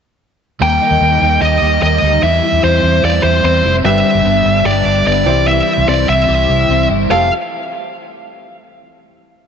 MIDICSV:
0, 0, Header, 1, 6, 480
1, 0, Start_track
1, 0, Tempo, 403769
1, 732, Time_signature, 4, 2, 24, 8
1, 5534, Tempo, 408719
1, 11192, End_track
2, 0, Start_track
2, 0, Title_t, "Lead electric guitar"
2, 0, Program_c, 0, 29
2, 739, Note_on_c, 0, 79, 98
2, 1646, Note_off_c, 0, 79, 0
2, 1684, Note_on_c, 0, 75, 89
2, 2132, Note_off_c, 0, 75, 0
2, 2171, Note_on_c, 0, 75, 86
2, 2615, Note_off_c, 0, 75, 0
2, 2652, Note_on_c, 0, 76, 89
2, 3096, Note_off_c, 0, 76, 0
2, 3139, Note_on_c, 0, 72, 83
2, 3620, Note_off_c, 0, 72, 0
2, 3625, Note_on_c, 0, 74, 86
2, 3838, Note_off_c, 0, 74, 0
2, 3843, Note_on_c, 0, 72, 79
2, 4090, Note_off_c, 0, 72, 0
2, 4105, Note_on_c, 0, 72, 86
2, 4432, Note_off_c, 0, 72, 0
2, 4579, Note_on_c, 0, 76, 94
2, 5536, Note_off_c, 0, 76, 0
2, 5541, Note_on_c, 0, 74, 88
2, 5982, Note_off_c, 0, 74, 0
2, 6026, Note_on_c, 0, 74, 82
2, 6465, Note_off_c, 0, 74, 0
2, 6500, Note_on_c, 0, 76, 92
2, 6979, Note_off_c, 0, 76, 0
2, 6984, Note_on_c, 0, 74, 83
2, 7201, Note_off_c, 0, 74, 0
2, 7222, Note_on_c, 0, 76, 82
2, 8129, Note_off_c, 0, 76, 0
2, 8422, Note_on_c, 0, 77, 77
2, 8640, Note_off_c, 0, 77, 0
2, 11192, End_track
3, 0, Start_track
3, 0, Title_t, "Upright piano"
3, 0, Program_c, 1, 0
3, 4569, Note_on_c, 1, 62, 60
3, 4576, Note_on_c, 1, 67, 59
3, 4576, Note_on_c, 1, 71, 70
3, 4773, Control_c, 1, 64, 127
3, 6218, Note_off_c, 1, 62, 0
3, 6221, Note_off_c, 1, 67, 0
3, 6222, Note_off_c, 1, 71, 0
3, 6238, Note_on_c, 1, 64, 58
3, 6241, Note_on_c, 1, 67, 60
3, 6249, Note_on_c, 1, 72, 65
3, 6268, Control_c, 1, 64, 0
3, 6480, Control_c, 1, 64, 127
3, 8361, Note_off_c, 1, 64, 0
3, 8362, Note_off_c, 1, 67, 0
3, 8366, Note_off_c, 1, 72, 0
3, 8416, Note_on_c, 1, 67, 67
3, 8417, Note_on_c, 1, 69, 85
3, 8420, Note_on_c, 1, 65, 72
3, 8424, Control_c, 1, 64, 0
3, 8637, Note_off_c, 1, 67, 0
3, 8638, Note_off_c, 1, 69, 0
3, 8639, Note_off_c, 1, 65, 0
3, 11192, End_track
4, 0, Start_track
4, 0, Title_t, "Clean electric guitar"
4, 0, Program_c, 2, 27
4, 735, Note_on_c, 2, 58, 73
4, 967, Note_on_c, 2, 63, 54
4, 1198, Note_off_c, 2, 58, 0
4, 1212, Note_on_c, 2, 58, 60
4, 1435, Note_off_c, 2, 63, 0
4, 1449, Note_on_c, 2, 63, 55
4, 1685, Note_on_c, 2, 67, 65
4, 1915, Note_off_c, 2, 63, 0
4, 1929, Note_on_c, 2, 63, 51
4, 2147, Note_off_c, 2, 58, 0
4, 2161, Note_on_c, 2, 58, 57
4, 2386, Note_off_c, 2, 63, 0
4, 2400, Note_on_c, 2, 63, 58
4, 2645, Note_on_c, 2, 52, 77
4, 2691, Note_off_c, 2, 63, 0
4, 2692, Note_off_c, 2, 58, 0
4, 2889, Note_on_c, 2, 64, 61
4, 3128, Note_on_c, 2, 60, 62
4, 3350, Note_off_c, 2, 64, 0
4, 3364, Note_on_c, 2, 64, 59
4, 3600, Note_off_c, 2, 67, 0
4, 3605, Note_on_c, 2, 65, 64
4, 3727, Note_off_c, 2, 65, 0
4, 3727, Note_on_c, 2, 67, 55
4, 3833, Note_off_c, 2, 64, 0
4, 3847, Note_on_c, 2, 64, 59
4, 4078, Note_off_c, 2, 60, 0
4, 4092, Note_on_c, 2, 60, 60
4, 4318, Note_off_c, 2, 64, 0
4, 4333, Note_on_c, 2, 64, 62
4, 4567, Note_off_c, 2, 52, 0
4, 4571, Note_on_c, 2, 55, 82
4, 4617, Note_off_c, 2, 67, 0
4, 4619, Note_off_c, 2, 64, 0
4, 4620, Note_off_c, 2, 60, 0
4, 4814, Note_on_c, 2, 60, 64
4, 4935, Note_off_c, 2, 60, 0
4, 4935, Note_on_c, 2, 62, 49
4, 5051, Note_on_c, 2, 59, 61
4, 5278, Note_off_c, 2, 62, 0
4, 5292, Note_on_c, 2, 62, 59
4, 5533, Note_on_c, 2, 67, 60
4, 5756, Note_off_c, 2, 62, 0
4, 5770, Note_on_c, 2, 62, 61
4, 6004, Note_off_c, 2, 59, 0
4, 6018, Note_on_c, 2, 59, 60
4, 6246, Note_off_c, 2, 55, 0
4, 6251, Note_on_c, 2, 52, 86
4, 6298, Note_off_c, 2, 62, 0
4, 6302, Note_off_c, 2, 59, 0
4, 6477, Note_off_c, 2, 52, 0
4, 6491, Note_on_c, 2, 52, 80
4, 6733, Note_on_c, 2, 64, 63
4, 6967, Note_on_c, 2, 60, 64
4, 7194, Note_off_c, 2, 64, 0
4, 7209, Note_on_c, 2, 64, 62
4, 7442, Note_off_c, 2, 67, 0
4, 7447, Note_on_c, 2, 67, 65
4, 7680, Note_off_c, 2, 64, 0
4, 7694, Note_on_c, 2, 64, 60
4, 7932, Note_off_c, 2, 60, 0
4, 7937, Note_on_c, 2, 60, 56
4, 8159, Note_off_c, 2, 64, 0
4, 8173, Note_on_c, 2, 64, 62
4, 8399, Note_off_c, 2, 52, 0
4, 8404, Note_on_c, 2, 53, 76
4, 8410, Note_off_c, 2, 60, 0
4, 8415, Note_on_c, 2, 57, 81
4, 8421, Note_off_c, 2, 64, 0
4, 8426, Note_on_c, 2, 60, 91
4, 8427, Note_off_c, 2, 67, 0
4, 8431, Note_on_c, 2, 67, 80
4, 8599, Note_off_c, 2, 53, 0
4, 8605, Note_off_c, 2, 57, 0
4, 8610, Note_off_c, 2, 60, 0
4, 8613, Note_off_c, 2, 67, 0
4, 11192, End_track
5, 0, Start_track
5, 0, Title_t, "Overdriven electric guitar"
5, 0, Program_c, 3, 29
5, 709, Note_on_c, 3, 51, 72
5, 721, Note_on_c, 3, 55, 71
5, 727, Note_on_c, 3, 58, 73
5, 737, Note_on_c, 3, 63, 79
5, 1183, Note_off_c, 3, 51, 0
5, 1197, Note_on_c, 3, 51, 55
5, 1207, Note_off_c, 3, 55, 0
5, 1208, Note_off_c, 3, 58, 0
5, 1212, Note_on_c, 3, 55, 62
5, 1213, Note_off_c, 3, 63, 0
5, 1225, Note_on_c, 3, 58, 61
5, 1230, Note_on_c, 3, 63, 65
5, 1416, Note_off_c, 3, 63, 0
5, 1430, Note_on_c, 3, 63, 48
5, 1437, Note_off_c, 3, 58, 0
5, 1443, Note_off_c, 3, 51, 0
5, 1451, Note_off_c, 3, 55, 0
5, 1452, Note_on_c, 3, 58, 44
5, 1466, Note_on_c, 3, 55, 43
5, 1669, Note_off_c, 3, 55, 0
5, 1671, Note_on_c, 3, 51, 71
5, 1680, Note_off_c, 3, 58, 0
5, 1680, Note_off_c, 3, 63, 0
5, 1684, Note_on_c, 3, 55, 77
5, 1694, Note_on_c, 3, 58, 82
5, 1701, Note_on_c, 3, 63, 79
5, 2136, Note_off_c, 3, 51, 0
5, 2150, Note_on_c, 3, 51, 59
5, 2159, Note_off_c, 3, 55, 0
5, 2164, Note_on_c, 3, 55, 62
5, 2165, Note_off_c, 3, 58, 0
5, 2174, Note_off_c, 3, 63, 0
5, 2179, Note_on_c, 3, 58, 61
5, 2189, Note_on_c, 3, 63, 59
5, 2636, Note_off_c, 3, 51, 0
5, 2641, Note_on_c, 3, 52, 73
5, 2646, Note_off_c, 3, 55, 0
5, 2651, Note_on_c, 3, 55, 80
5, 2653, Note_off_c, 3, 58, 0
5, 2657, Note_on_c, 3, 60, 73
5, 2658, Note_off_c, 3, 63, 0
5, 2666, Note_on_c, 3, 64, 83
5, 3094, Note_off_c, 3, 52, 0
5, 3109, Note_on_c, 3, 52, 62
5, 3119, Note_off_c, 3, 55, 0
5, 3124, Note_on_c, 3, 55, 64
5, 3125, Note_off_c, 3, 60, 0
5, 3136, Note_off_c, 3, 64, 0
5, 3139, Note_on_c, 3, 60, 62
5, 3149, Note_on_c, 3, 64, 64
5, 3581, Note_off_c, 3, 52, 0
5, 3596, Note_on_c, 3, 52, 70
5, 3599, Note_off_c, 3, 55, 0
5, 3599, Note_off_c, 3, 60, 0
5, 3604, Note_on_c, 3, 55, 79
5, 3608, Note_off_c, 3, 64, 0
5, 3613, Note_on_c, 3, 60, 87
5, 3622, Note_on_c, 3, 64, 77
5, 4056, Note_off_c, 3, 52, 0
5, 4070, Note_on_c, 3, 52, 61
5, 4079, Note_off_c, 3, 55, 0
5, 4080, Note_off_c, 3, 60, 0
5, 4084, Note_on_c, 3, 55, 55
5, 4095, Note_off_c, 3, 64, 0
5, 4095, Note_on_c, 3, 60, 62
5, 4107, Note_on_c, 3, 64, 69
5, 4292, Note_off_c, 3, 64, 0
5, 4307, Note_on_c, 3, 64, 42
5, 4311, Note_off_c, 3, 60, 0
5, 4319, Note_off_c, 3, 52, 0
5, 4325, Note_on_c, 3, 60, 41
5, 4327, Note_off_c, 3, 55, 0
5, 4343, Note_on_c, 3, 55, 40
5, 4547, Note_on_c, 3, 43, 73
5, 4548, Note_off_c, 3, 55, 0
5, 4556, Note_on_c, 3, 50, 80
5, 4558, Note_off_c, 3, 64, 0
5, 4562, Note_on_c, 3, 55, 79
5, 4567, Note_off_c, 3, 60, 0
5, 4572, Note_on_c, 3, 59, 84
5, 4579, Note_on_c, 3, 62, 83
5, 5014, Note_off_c, 3, 50, 0
5, 5028, Note_on_c, 3, 50, 63
5, 5036, Note_off_c, 3, 55, 0
5, 5040, Note_off_c, 3, 43, 0
5, 5041, Note_on_c, 3, 55, 62
5, 5042, Note_off_c, 3, 59, 0
5, 5053, Note_off_c, 3, 62, 0
5, 5056, Note_on_c, 3, 59, 66
5, 5067, Note_on_c, 3, 62, 64
5, 5502, Note_off_c, 3, 50, 0
5, 5508, Note_on_c, 3, 43, 79
5, 5516, Note_on_c, 3, 50, 75
5, 5517, Note_off_c, 3, 59, 0
5, 5519, Note_off_c, 3, 55, 0
5, 5523, Note_off_c, 3, 62, 0
5, 5524, Note_on_c, 3, 55, 90
5, 5531, Note_on_c, 3, 59, 72
5, 5537, Note_on_c, 3, 62, 83
5, 5982, Note_off_c, 3, 50, 0
5, 5996, Note_on_c, 3, 50, 56
5, 5999, Note_off_c, 3, 43, 0
5, 6009, Note_off_c, 3, 55, 0
5, 6011, Note_off_c, 3, 59, 0
5, 6014, Note_off_c, 3, 62, 0
5, 6014, Note_on_c, 3, 55, 65
5, 6025, Note_on_c, 3, 59, 59
5, 6033, Note_on_c, 3, 62, 65
5, 6232, Note_off_c, 3, 62, 0
5, 6237, Note_on_c, 3, 64, 66
5, 6243, Note_off_c, 3, 50, 0
5, 6243, Note_off_c, 3, 59, 0
5, 6245, Note_off_c, 3, 55, 0
5, 6247, Note_on_c, 3, 60, 55
5, 6259, Note_on_c, 3, 55, 51
5, 6265, Note_on_c, 3, 48, 50
5, 6931, Note_off_c, 3, 48, 0
5, 6945, Note_on_c, 3, 48, 61
5, 6961, Note_off_c, 3, 55, 0
5, 6963, Note_off_c, 3, 64, 0
5, 6965, Note_on_c, 3, 55, 64
5, 6970, Note_off_c, 3, 60, 0
5, 6974, Note_on_c, 3, 60, 72
5, 6988, Note_on_c, 3, 64, 69
5, 7178, Note_off_c, 3, 64, 0
5, 7192, Note_on_c, 3, 64, 52
5, 7197, Note_off_c, 3, 60, 0
5, 7198, Note_off_c, 3, 48, 0
5, 7208, Note_off_c, 3, 55, 0
5, 7211, Note_on_c, 3, 60, 41
5, 7224, Note_on_c, 3, 55, 41
5, 7423, Note_off_c, 3, 55, 0
5, 7427, Note_on_c, 3, 48, 80
5, 7433, Note_off_c, 3, 60, 0
5, 7437, Note_on_c, 3, 55, 79
5, 7441, Note_off_c, 3, 64, 0
5, 7447, Note_on_c, 3, 60, 77
5, 7455, Note_on_c, 3, 64, 83
5, 7898, Note_off_c, 3, 48, 0
5, 7912, Note_on_c, 3, 48, 64
5, 7918, Note_off_c, 3, 55, 0
5, 7923, Note_on_c, 3, 55, 75
5, 7932, Note_off_c, 3, 60, 0
5, 7933, Note_off_c, 3, 64, 0
5, 7936, Note_on_c, 3, 60, 65
5, 7947, Note_on_c, 3, 64, 66
5, 8390, Note_off_c, 3, 48, 0
5, 8395, Note_on_c, 3, 53, 76
5, 8397, Note_off_c, 3, 55, 0
5, 8402, Note_on_c, 3, 55, 74
5, 8403, Note_off_c, 3, 60, 0
5, 8408, Note_on_c, 3, 60, 80
5, 8410, Note_off_c, 3, 64, 0
5, 8415, Note_on_c, 3, 65, 89
5, 8421, Note_on_c, 3, 69, 90
5, 8595, Note_off_c, 3, 53, 0
5, 8599, Note_off_c, 3, 55, 0
5, 8602, Note_off_c, 3, 60, 0
5, 8605, Note_off_c, 3, 65, 0
5, 8608, Note_off_c, 3, 69, 0
5, 11192, End_track
6, 0, Start_track
6, 0, Title_t, "Fingered electric bass"
6, 0, Program_c, 4, 33
6, 722, Note_on_c, 4, 39, 82
6, 923, Note_off_c, 4, 39, 0
6, 1078, Note_on_c, 4, 39, 86
6, 1182, Note_off_c, 4, 39, 0
6, 1200, Note_on_c, 4, 39, 90
6, 1401, Note_off_c, 4, 39, 0
6, 1445, Note_on_c, 4, 39, 88
6, 1643, Note_off_c, 4, 39, 0
6, 1683, Note_on_c, 4, 39, 88
6, 1882, Note_off_c, 4, 39, 0
6, 1923, Note_on_c, 4, 39, 100
6, 2122, Note_off_c, 4, 39, 0
6, 2162, Note_on_c, 4, 39, 84
6, 2361, Note_off_c, 4, 39, 0
6, 2404, Note_on_c, 4, 38, 83
6, 2602, Note_off_c, 4, 38, 0
6, 2644, Note_on_c, 4, 40, 96
6, 2842, Note_off_c, 4, 40, 0
6, 3000, Note_on_c, 4, 40, 83
6, 3101, Note_off_c, 4, 40, 0
6, 3134, Note_on_c, 4, 40, 84
6, 3328, Note_off_c, 4, 40, 0
6, 3364, Note_on_c, 4, 40, 90
6, 3562, Note_off_c, 4, 40, 0
6, 3607, Note_on_c, 4, 40, 98
6, 3804, Note_off_c, 4, 40, 0
6, 3844, Note_on_c, 4, 40, 90
6, 4043, Note_off_c, 4, 40, 0
6, 4086, Note_on_c, 4, 40, 91
6, 4284, Note_off_c, 4, 40, 0
6, 4333, Note_on_c, 4, 29, 93
6, 4529, Note_off_c, 4, 29, 0
6, 4573, Note_on_c, 4, 31, 95
6, 4769, Note_off_c, 4, 31, 0
6, 4930, Note_on_c, 4, 31, 94
6, 5029, Note_off_c, 4, 31, 0
6, 5049, Note_on_c, 4, 31, 97
6, 5248, Note_off_c, 4, 31, 0
6, 5296, Note_on_c, 4, 31, 95
6, 5492, Note_off_c, 4, 31, 0
6, 5532, Note_on_c, 4, 31, 100
6, 5729, Note_off_c, 4, 31, 0
6, 5767, Note_on_c, 4, 31, 88
6, 5965, Note_off_c, 4, 31, 0
6, 6009, Note_on_c, 4, 31, 93
6, 6206, Note_off_c, 4, 31, 0
6, 6242, Note_on_c, 4, 36, 94
6, 6639, Note_off_c, 4, 36, 0
6, 6849, Note_on_c, 4, 36, 97
6, 6948, Note_off_c, 4, 36, 0
6, 6972, Note_on_c, 4, 36, 89
6, 7168, Note_off_c, 4, 36, 0
6, 7214, Note_on_c, 4, 36, 94
6, 7409, Note_off_c, 4, 36, 0
6, 7452, Note_on_c, 4, 36, 91
6, 7648, Note_off_c, 4, 36, 0
6, 7693, Note_on_c, 4, 36, 101
6, 7889, Note_off_c, 4, 36, 0
6, 7922, Note_on_c, 4, 36, 86
6, 8122, Note_off_c, 4, 36, 0
6, 8163, Note_on_c, 4, 31, 93
6, 8363, Note_off_c, 4, 31, 0
6, 8405, Note_on_c, 4, 29, 81
6, 8631, Note_off_c, 4, 29, 0
6, 11192, End_track
0, 0, End_of_file